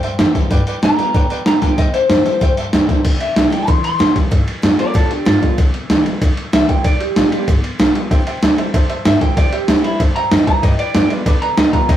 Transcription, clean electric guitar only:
0.84 1.45 A#5 loud
1.47 1.63 A#5 loud
1.63 1.78 G5 medium
1.78 1.94 D#5 medium
1.94 2.55 C5 loud
3.21 3.52 E5 medium
3.52 3.68 G5 medium
3.68 3.84 C6 loud
3.85 4.15 C6 medium
4.79 4.95 A#4 medium
4.79 4.95 D5 loud
4.95 5.11 F4 medium
4.95 5.12 A4 medium
5.11 5.26 D4 medium
5.11 5.27 G4 medium
5.27 5.57 F4 loud
6.53 6.69 E5 loud
6.69 6.84 G5 medium
6.84 7.00 D5 medium
7.01 7.31 G4 medium
7.32 7.47 G4 medium
9.06 9.21 E5 loud
9.22 9.37 G5 medium
9.37 9.53 D5 loud
9.53 9.83 G4 medium
9.84 9.99 E4 medium
10.16 10.31 A#5 loud
10.32 10.47 D#5 loud
10.47 10.63 A#5 medium
10.63 10.78 D#5 loud
10.79 11.10 D5 loud
11.42 11.57 A#5 loud
11.58 11.73 D#5 loud
11.73 11.88 A#5 medium
11.89 11.97 D#5 medium

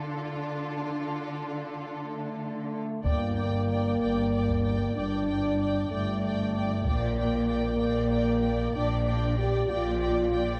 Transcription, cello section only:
0.00 2.81 D3 soft
3.05 3.89 G2 soft
4.01 4.85 G2 soft
4.96 5.80 G2 soft
5.90 6.75 G2 soft
6.86 7.69 A#2 medium
7.81 8.64 A#2 soft
8.75 9.58 A#2 medium
9.70 10.53 A#2 medium

